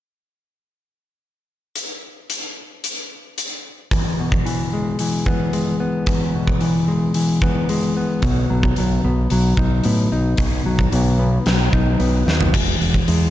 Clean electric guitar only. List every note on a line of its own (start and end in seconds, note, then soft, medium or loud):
3.91 5.27 E2 medium
4.20 5.54 B2 medium
4.46 4.99 E3 medium
4.73 5.52 G#3 medium
5.00 6.35 E3 medium
5.26 5.80 B3 medium
5.53 6.87 G#3 medium
5.80 7.42 B3 medium
6.07 7.42 E2 medium
6.34 7.69 B2 medium
6.61 7.14 E3 medium
6.88 7.68 G#3 medium
7.15 8.23 E3 medium
7.42 7.96 B3 medium
7.69 8.23 G#3 medium
7.97 9.05 B3 medium
8.23 9.58 B2 medium
8.50 8.77 F#3 medium
8.78 9.31 F#3 medium
9.05 9.85 B3 medium
9.31 10.65 F#3 medium
9.59 10.11 D#4 medium
9.85 11.18 B3 medium
10.12 11.47 D#4 medium
10.39 11.74 B2 medium
10.66 10.91 F#3 medium
10.92 11.45 F#3 medium
11.19 11.99 B3 medium
11.46 12.54 F#3 medium
11.73 12.26 D#4 medium
12.00 12.54 B3 medium
12.27 12.54 D#4 medium
12.54 13.30 E2 medium
13.07 13.30 G#3 medium